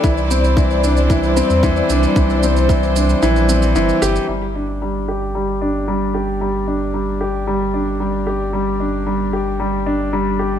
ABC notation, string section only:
X:1
M:4/4
L:1/8
Q:1/4=113
K:Gdor
V:1 name="String section"
[G,Ecd]8- | [G,Ecd]8 | [G,DBd]8- | [G,DBd]8- |
[G,DBd]8 |]